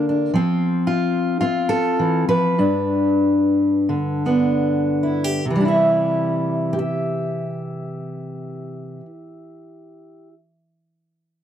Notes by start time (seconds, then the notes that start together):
Already playing: D3 A#3
0.09 D4
0.34 F3 C4
0.87 F4
1.41 C4 F4
1.69 A4
1.99 E3
2.29 F3 B4
2.58 G2 D4
3.89 D3
4.26 B3 D4
5.03 E4
5.24 G4
5.45 C3
5.50 E3
5.55 G3
5.61 D4
5.66 E4 E5
6.73 G4
6.79 E5